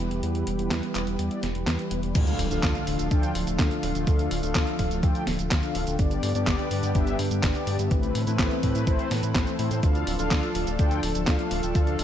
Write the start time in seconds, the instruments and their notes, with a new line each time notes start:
Already playing: analog synth pad E3 G3 G4 B4, analog polysynth G3 B3 E4 B4
0.11 analog synth bass E1, closed hi-hat
0.23 analog synth bass E2, analog polysynth G3 B3 E4 B4, closed hi-hat
0.35 closed hi-hat
0.47 analog synth bass E1, closed hi-hat
0.59 analog synth bass E1, analog polysynth G3 B3 E4 B4, closed hi-hat
0.71 analog synth bass E2, snare, clap, closed hi-hat
0.83 closed hi-hat
0.95 analog synth bass E1, analog polysynth G3 B3 E4 B4, clap, closed hi-hat
1.07 analog synth bass E1, closed hi-hat
1.19 analog synth bass E2, analog polysynth G3 B3 E4 D5, closed hi-hat
1.31 closed hi-hat
1.43 analog synth bass E1, snare, closed hi-hat
1.55 analog synth bass E1, closed hi-hat
1.67 analog synth bass E2, analog polysynth G3 B3 E4 B4, snare, clap, closed hi-hat
1.79 analog polysynth G3 B3 E4 B4, closed hi-hat
1.91 analog synth bass E1, closed hi-hat
2.03 analog synth bass E1, analog polysynth G3 B3 E4 D5, closed hi-hat
2.15 analog synth bass D2, analog synth pad D3 F3 A3 F4, analog polysynth D4 F4 A4 F5, kick, closed hi-hat, crash, impact, cabasa
2.27 closed hi-hat, cabasa
2.39 analog synth bass D1, open hi-hat
2.51 analog synth bass D1, analog polysynth D4 F4 A4 F5, closed hi-hat, cabasa
2.63 analog synth bass D2, kick, snare, clap, closed hi-hat, cabasa
2.75 closed hi-hat, cabasa
2.87 analog synth bass D1, analog polysynth D4 F4 A4 F5, open hi-hat
2.99 analog synth bass D1, closed hi-hat, cabasa
3.11 analog synth bass D2, analog polysynth D4 F4 A4 G5, kick, closed hi-hat, cabasa
3.23 closed hi-hat, cabasa
3.35 analog synth bass D1, open hi-hat
3.47 analog synth bass D1, closed hi-hat, cabasa
3.59 analog synth bass D2, analog polysynth D4 F4 A4 F5, kick, snare, clap, closed hi-hat, cabasa
3.71 analog polysynth D4 F4 A4 F5, closed hi-hat, cabasa
3.83 analog synth bass D1, open hi-hat
3.95 analog synth bass D1, analog polysynth D4 F4 A4 G5, closed hi-hat, cabasa
4.07 analog synth bass D2, analog polysynth D4 F4 A4 F5, kick, closed hi-hat, cabasa
4.19 closed hi-hat, cabasa
4.31 analog synth bass D1, open hi-hat
4.43 analog synth bass D1, analog polysynth D4 F4 A4 F5, closed hi-hat, cabasa
4.55 analog synth bass D2, kick, snare, clap, closed hi-hat, cabasa
4.67 closed hi-hat, cabasa
4.79 analog synth bass D1, analog polysynth D4 F4 A4 F5, kick, open hi-hat
4.91 analog synth bass D1, closed hi-hat, cabasa
5.03 analog synth bass D2, analog polysynth D4 F4 A4 G5, kick, closed hi-hat, cabasa
5.15 closed hi-hat, cabasa
5.27 analog synth bass D1, snare, open hi-hat
5.39 analog synth bass D1, closed hi-hat, cabasa
5.51 analog synth bass D2, analog polysynth D4 F4 A4 F5, kick, snare, clap, closed hi-hat, cabasa
5.63 analog polysynth D4 F4 A4 F5, closed hi-hat, cabasa
5.75 analog synth bass D1, open hi-hat
5.87 analog synth bass D1, analog polysynth D4 F4 A4 G5, closed hi-hat, cabasa
5.99 analog synth bass G1, analog synth pad D3 G3 B3 G4, analog polysynth B3 D4 G4 D5, kick, closed hi-hat, cabasa
6.11 closed hi-hat, cabasa
6.23 analog synth bass G2, open hi-hat
6.35 analog synth bass G2, analog polysynth B3 D4 G4 D5, closed hi-hat, cabasa
6.47 analog synth bass G1, kick, snare, clap, closed hi-hat, cabasa
6.59 closed hi-hat, cabasa
6.71 analog synth bass G2, analog polysynth B3 D4 G4 D5, open hi-hat
6.83 analog synth bass G2, closed hi-hat, cabasa
6.95 analog synth bass G1, analog polysynth B3 D4 G4 E5, kick, closed hi-hat, cabasa
7.07 closed hi-hat, cabasa
7.19 analog synth bass G2, open hi-hat
7.31 analog synth bass G2, closed hi-hat, cabasa
7.43 analog synth bass G1, analog polysynth B3 D4 G4 D5, kick, snare, clap, closed hi-hat, cabasa
7.55 analog polysynth B3 D4 G4 D5, closed hi-hat, cabasa
7.67 analog synth bass G2, open hi-hat
7.79 analog synth bass G2, analog polysynth B3 D4 G4, closed hi-hat, cabasa
7.91 analog synth bass A1, analog synth pad E3 C4 A4 B4, analog polysynth A3 C4 E4 B4, kick, closed hi-hat, cabasa
8.03 closed hi-hat, cabasa
8.15 analog synth bass A2, open hi-hat
8.27 analog synth bass A2, analog polysynth A3 C4 E4 B4, closed hi-hat, cabasa
8.39 analog synth bass A1, kick, snare, clap, closed hi-hat, cabasa
8.51 closed hi-hat, cabasa
8.63 analog synth bass A2, analog polysynth A3 C4 E4 B4, kick, open hi-hat
8.75 analog synth bass A2, closed hi-hat, cabasa
8.87 analog synth bass A1, analog polysynth A3 C4 E4 C5, kick, closed hi-hat, cabasa
8.99 closed hi-hat, cabasa
9.11 analog synth bass A2, snare, open hi-hat
9.23 analog synth bass A2, closed hi-hat, cabasa
9.35 analog synth bass A1, analog polysynth A3 C4 E4 C5, kick, snare, clap, closed hi-hat, cabasa
9.47 closed hi-hat, cabasa
9.59 analog synth bass A2, analog polysynth A3 C4 E4 C5, open hi-hat
9.71 analog synth bass A2, closed hi-hat, cabasa
9.83 analog synth bass D2, analog synth pad F3 A3 D4, analog polysynth D4 F4 A4 F5, kick, closed hi-hat, cabasa
9.95 closed hi-hat, cabasa
10.07 analog synth bass D1, open hi-hat
10.19 analog synth bass D1, analog polysynth D4 F4 A4 F5, closed hi-hat, cabasa
10.31 analog synth bass D2, kick, snare, clap, closed hi-hat, cabasa
10.43 closed hi-hat, cabasa
10.55 analog synth bass D1, analog polysynth D4 F4 A4 F5, open hi-hat
10.67 analog synth bass D1, closed hi-hat, cabasa
10.79 analog synth bass D2, analog polysynth D4 F4 A4 G5, kick, closed hi-hat, cabasa
10.91 closed hi-hat, cabasa
11.03 analog synth bass D1, open hi-hat
11.15 analog synth bass D1, closed hi-hat, cabasa
11.27 analog synth bass D2, analog polysynth D4 F4 A4 F5, kick, snare, clap, closed hi-hat, cabasa
11.39 analog polysynth D4 F4 A4 F5, closed hi-hat, cabasa
11.51 analog synth bass D1, open hi-hat
11.63 analog synth bass D1, analog polysynth D4 F4 A4 G5, closed hi-hat, cabasa
11.75 analog synth bass D2, analog polysynth D4 F4 A4 F5, kick, closed hi-hat, cabasa
11.87 closed hi-hat, cabasa
11.99 analog synth bass D1, open hi-hat